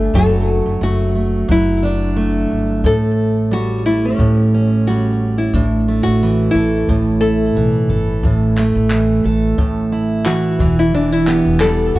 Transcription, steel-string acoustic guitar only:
0, 0, Header, 1, 2, 480
1, 0, Start_track
1, 0, Tempo, 674157
1, 105, Time_signature, 4, 2, 24, 8
1, 8538, End_track
2, 0, Start_track
2, 0, Title_t, "Steel-string acoustic guitar"
2, 0, Program_c, 0, 25
2, 0, Note_on_c, 0, 55, 66
2, 0, Note_on_c, 0, 57, 62
2, 0, Note_on_c, 0, 62, 55
2, 0, Note_on_c, 0, 67, 57
2, 101, Note_off_c, 0, 55, 0
2, 104, Note_on_c, 0, 54, 69
2, 108, Note_off_c, 0, 67, 0
2, 111, Note_on_c, 0, 66, 50
2, 575, Note_off_c, 0, 57, 0
2, 577, Note_on_c, 0, 57, 53
2, 817, Note_off_c, 0, 57, 0
2, 820, Note_on_c, 0, 57, 50
2, 1048, Note_off_c, 0, 54, 0
2, 1057, Note_on_c, 0, 54, 69
2, 1298, Note_off_c, 0, 62, 0
2, 1301, Note_on_c, 0, 62, 58
2, 1536, Note_off_c, 0, 57, 0
2, 1539, Note_on_c, 0, 57, 62
2, 2022, Note_on_c, 0, 45, 72
2, 2024, Note_off_c, 0, 66, 0
2, 2027, Note_on_c, 0, 69, 50
2, 2074, Note_off_c, 0, 54, 0
2, 2076, Note_off_c, 0, 62, 0
2, 2500, Note_on_c, 0, 55, 52
2, 2521, Note_off_c, 0, 57, 0
2, 2751, Note_on_c, 0, 57, 51
2, 2979, Note_off_c, 0, 45, 0
2, 2987, Note_on_c, 0, 45, 66
2, 3234, Note_on_c, 0, 61, 53
2, 3463, Note_off_c, 0, 55, 0
2, 3474, Note_on_c, 0, 55, 53
2, 3939, Note_off_c, 0, 45, 0
2, 3948, Note_on_c, 0, 45, 67
2, 4003, Note_off_c, 0, 55, 0
2, 4003, Note_off_c, 0, 61, 0
2, 4184, Note_off_c, 0, 57, 0
2, 4187, Note_on_c, 0, 57, 56
2, 4434, Note_on_c, 0, 52, 54
2, 4517, Note_off_c, 0, 69, 0
2, 4665, Note_on_c, 0, 69, 57
2, 4897, Note_off_c, 0, 45, 0
2, 4906, Note_on_c, 0, 45, 69
2, 5145, Note_on_c, 0, 64, 51
2, 5384, Note_off_c, 0, 52, 0
2, 5387, Note_on_c, 0, 52, 60
2, 5614, Note_off_c, 0, 69, 0
2, 5623, Note_on_c, 0, 69, 56
2, 5863, Note_off_c, 0, 45, 0
2, 5872, Note_on_c, 0, 45, 70
2, 6106, Note_off_c, 0, 57, 0
2, 6117, Note_on_c, 0, 57, 58
2, 6349, Note_off_c, 0, 52, 0
2, 6352, Note_on_c, 0, 52, 54
2, 6580, Note_off_c, 0, 69, 0
2, 6589, Note_on_c, 0, 69, 56
2, 6813, Note_off_c, 0, 45, 0
2, 6821, Note_on_c, 0, 45, 71
2, 7062, Note_off_c, 0, 64, 0
2, 7064, Note_on_c, 0, 64, 58
2, 7301, Note_off_c, 0, 52, 0
2, 7303, Note_on_c, 0, 52, 59
2, 7549, Note_off_c, 0, 52, 0
2, 7549, Note_on_c, 0, 52, 73
2, 7595, Note_off_c, 0, 45, 0
2, 7599, Note_off_c, 0, 69, 0
2, 7603, Note_off_c, 0, 57, 0
2, 7782, Note_off_c, 0, 52, 0
2, 7790, Note_on_c, 0, 52, 76
2, 8026, Note_on_c, 0, 59, 59
2, 8269, Note_on_c, 0, 55, 59
2, 8511, Note_on_c, 0, 66, 57
2, 8533, Note_off_c, 0, 64, 0
2, 8538, Note_off_c, 0, 52, 0
2, 8538, Note_off_c, 0, 55, 0
2, 8538, Note_off_c, 0, 59, 0
2, 8538, Note_off_c, 0, 66, 0
2, 8538, End_track
0, 0, End_of_file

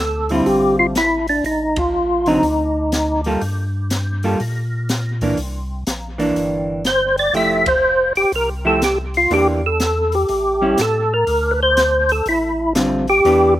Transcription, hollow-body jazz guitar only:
0, 0, Header, 1, 2, 480
1, 0, Start_track
1, 0, Key_signature, -1, "minor"
1, 0, Tempo, 491400
1, 1412, Time_signature, 4, 2, 24, 8
1, 13284, End_track
2, 0, Start_track
2, 0, Title_t, "Hollow-body jazz guitar"
2, 0, Program_c, 0, 26
2, 299, Note_on_c, 0, 50, 56
2, 305, Note_on_c, 0, 55, 61
2, 307, Note_on_c, 0, 60, 59
2, 311, Note_on_c, 0, 65, 62
2, 905, Note_off_c, 0, 50, 0
2, 908, Note_off_c, 0, 55, 0
2, 909, Note_off_c, 0, 60, 0
2, 911, Note_off_c, 0, 65, 0
2, 2214, Note_on_c, 0, 50, 59
2, 2220, Note_on_c, 0, 54, 56
2, 2224, Note_on_c, 0, 60, 56
2, 2228, Note_on_c, 0, 63, 66
2, 2359, Note_off_c, 0, 50, 0
2, 2362, Note_off_c, 0, 54, 0
2, 2364, Note_off_c, 0, 60, 0
2, 2366, Note_off_c, 0, 63, 0
2, 3187, Note_on_c, 0, 55, 51
2, 3188, Note_on_c, 0, 58, 58
2, 3194, Note_on_c, 0, 65, 53
2, 3197, Note_on_c, 0, 69, 58
2, 3326, Note_off_c, 0, 55, 0
2, 3326, Note_off_c, 0, 58, 0
2, 3329, Note_off_c, 0, 65, 0
2, 3331, Note_off_c, 0, 69, 0
2, 4142, Note_on_c, 0, 55, 62
2, 4143, Note_on_c, 0, 58, 55
2, 4151, Note_on_c, 0, 65, 59
2, 4154, Note_on_c, 0, 69, 63
2, 4283, Note_off_c, 0, 55, 0
2, 4284, Note_off_c, 0, 58, 0
2, 4287, Note_off_c, 0, 65, 0
2, 4289, Note_off_c, 0, 69, 0
2, 5098, Note_on_c, 0, 52, 49
2, 5105, Note_on_c, 0, 58, 56
2, 5108, Note_on_c, 0, 62, 56
2, 5241, Note_off_c, 0, 52, 0
2, 5245, Note_off_c, 0, 58, 0
2, 5246, Note_off_c, 0, 62, 0
2, 6040, Note_on_c, 0, 52, 60
2, 6047, Note_on_c, 0, 58, 63
2, 6055, Note_on_c, 0, 62, 72
2, 6656, Note_off_c, 0, 52, 0
2, 6660, Note_off_c, 0, 58, 0
2, 6664, Note_off_c, 0, 62, 0
2, 7170, Note_on_c, 0, 53, 52
2, 7174, Note_on_c, 0, 57, 51
2, 7178, Note_on_c, 0, 64, 51
2, 7178, Note_on_c, 0, 67, 57
2, 7457, Note_off_c, 0, 53, 0
2, 7459, Note_off_c, 0, 57, 0
2, 7461, Note_off_c, 0, 64, 0
2, 7461, Note_off_c, 0, 67, 0
2, 8448, Note_on_c, 0, 53, 57
2, 8453, Note_on_c, 0, 64, 60
2, 8456, Note_on_c, 0, 57, 60
2, 8461, Note_on_c, 0, 67, 68
2, 8597, Note_off_c, 0, 53, 0
2, 8599, Note_off_c, 0, 64, 0
2, 8601, Note_off_c, 0, 57, 0
2, 8604, Note_off_c, 0, 67, 0
2, 9093, Note_on_c, 0, 52, 52
2, 9097, Note_on_c, 0, 58, 59
2, 9098, Note_on_c, 0, 62, 60
2, 9106, Note_on_c, 0, 67, 57
2, 9378, Note_off_c, 0, 52, 0
2, 9381, Note_off_c, 0, 58, 0
2, 9381, Note_off_c, 0, 62, 0
2, 9385, Note_off_c, 0, 67, 0
2, 10368, Note_on_c, 0, 55, 55
2, 10374, Note_on_c, 0, 61, 54
2, 10380, Note_on_c, 0, 64, 59
2, 10517, Note_off_c, 0, 55, 0
2, 10520, Note_off_c, 0, 61, 0
2, 10524, Note_off_c, 0, 64, 0
2, 12455, Note_on_c, 0, 50, 54
2, 12459, Note_on_c, 0, 55, 50
2, 12466, Note_on_c, 0, 60, 49
2, 12470, Note_on_c, 0, 65, 59
2, 12740, Note_off_c, 0, 50, 0
2, 12742, Note_off_c, 0, 55, 0
2, 12745, Note_off_c, 0, 60, 0
2, 12748, Note_off_c, 0, 65, 0
2, 12944, Note_on_c, 0, 52, 54
2, 12950, Note_on_c, 0, 59, 57
2, 12952, Note_on_c, 0, 62, 55
2, 12954, Note_on_c, 0, 67, 59
2, 13224, Note_off_c, 0, 52, 0
2, 13227, Note_off_c, 0, 59, 0
2, 13229, Note_off_c, 0, 62, 0
2, 13230, Note_off_c, 0, 67, 0
2, 13284, End_track
0, 0, End_of_file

